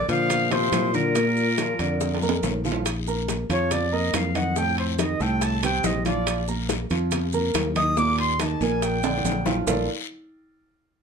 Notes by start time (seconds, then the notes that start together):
0.09 A#2 D3 F3 D4 D5 F5, high bongo, high timbale, short guiro, maracas
0.30 high bongo, high conga, low conga, high timbale, long guiro, maracas
0.50 C3 F3 F4 C5 F5, high conga, low conga, high timbale, maracas
0.72 A#2, high bongo, low bongo, high conga, high timbale, low timbale, short guiro, maracas
0.93 A#2 D3 D4 A#4 D5, high bongo, high conga, short guiro, maracas
1.15 A#2 A#3 A#4, high bongo, high conga, high timbale, long guiro, maracas
1.37 high bongo, high conga, maracas
1.58 F3 F4 F5, high bongo, high conga, high timbale, low timbale, short guiro, maracas
1.79 F2 D3 D4 D5, high bongo, high conga, high timbale, short guiro, maracas
2.00 high bongo, high conga, high timbale, long guiro, maracas
2.14 high timbale
2.22 A#3 A#4 A#5, high conga, maracas
2.29 high timbale
2.43 A#1, high bongo, low bongo, low conga, low timbale, short guiro, maracas
2.64 F3 F4 F5, high bongo, low conga, short guiro, maracas
2.72 low timbale
2.86 high bongo, high conga, high timbale, long guiro, maracas
3.07 A#3 A#4 A#5, high bongo, high conga, maracas
3.28 high bongo, high conga, high timbale, low timbale, short guiro, maracas
3.50 F2 F3 F4 C#5 F5, high bongo, high conga, high timbale, short guiro, maracas
3.71 D5, high bongo, high conga, low conga, high timbale, long guiro, maracas
3.92 A#3 A#4 D#5 A#5, high bongo, high conga
4.14 F2 F5, high bongo, low bongo, high conga, high timbale, low timbale, short guiro, maracas
4.35 D#3 D#4 D#5 F#5, high conga, high timbale, short guiro, maracas
4.56 A2 A3 A4 G5, high bongo, high conga, long guiro, maracas
4.78 C5, high conga, high timbale
4.98 D#3 D#4 D#5, high bongo, high conga, high timbale, low timbale, short guiro, maracas
5.20 C2 A2 A3 A4 G5, high bongo, high conga, short guiro, maracas
5.41 A5, high bongo, high conga, high timbale, long guiro, maracas
5.63 C3 C4 C5 G5, high bongo, high conga, high timbale, maracas
5.84 A#1 D#5, high bongo, low bongo, high conga, low timbale, short guiro, maracas
6.05 F3 F4 D5 F5, high bongo, high conga, high timbale, short guiro, maracas
6.26 high bongo, high conga, high timbale, long guiro, maracas
6.48 A#3 A#4 A#5, high bongo, high conga, maracas
6.69 high bongo, high conga, high timbale, low timbale, short guiro, maracas
6.90 F2 F3 F4 F5, high bongo, high conga, high timbale, short guiro, maracas
7.11 high bongo, high conga, low conga, high timbale, long guiro, maracas
7.33 A#3 A#4 A#5, high bongo, high conga, low conga, maracas
7.54 D#2, high bongo, low bongo, high conga, high timbale, low timbale, short guiro, maracas
7.76 D#3 D#4 D#5 D#6, high conga, high timbale, short guiro, maracas
7.97 A#2 A#3 A#4 D6, high bongo, long guiro, maracas
8.18 C6, high conga, high timbale
8.39 D#3 D#4 D#5 A5, high bongo, high conga, high timbale, low timbale, short guiro, maracas
8.61 A#1 A#2 A#3 A#4 G#5, high bongo, high conga, short guiro, maracas
8.82 G5, high bongo, high conga, high timbale, long guiro, maracas
9.03 D3 D4 D5, high bongo, high conga, high timbale, maracas
9.18 low bongo
9.24 A#1, high conga, high timbale, short guiro, maracas
9.32 low bongo
9.45 F3 F4 F5, low bongo, high conga, low timbale, short guiro, maracas
9.66 A#1 A#3 F4 A4 A#4 D5 F5, low bongo, low conga, low timbale, long guiro, maracas